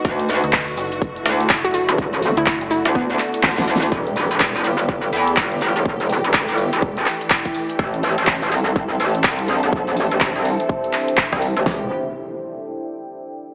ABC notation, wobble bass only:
X:1
M:4/4
L:1/16
Q:"Swing 16ths" 1/4=124
K:Em
V:1 name="Wobble bass" clef=bass
D,,3 z6 z D,,2 z3 E,,,- | E,,,3 z4 D,,3 z2 D,,2 D,,2 | E,,,3 E,,,3 G,,,4 E,,2 G,,,3 F,,,- | F,,,3 E,,,2 G,,,2 E,,,3 z6 |
A,,,3 A,,,3 C,,4 A,,,2 C,,3 B,,,- | B,,,3 A,,,2 C,,2 z6 C,,2 A,,, | E,,,2 z12 z2 |]